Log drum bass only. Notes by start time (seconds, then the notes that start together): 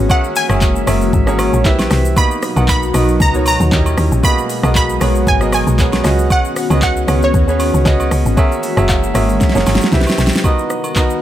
0.50 F#1
0.87 F#1
1.13 G#1
1.53 A#1
1.91 C2
2.57 B1
2.94 B1
3.20 C#2
3.60 D#2
3.72 D#2
3.98 D#2
4.12 A#1
4.64 B1
5.01 B1
5.27 G#1
5.67 B1
6.05 C#2
6.70 C#2
7.08 C#2
7.34 D#2
7.74 C#2
7.86 C#2
8.12 C#2
8.26 G#1
8.77 F#1
9.15 G#1
9.55 F#1
9.67 G#1
9.93 C2
10.18 B1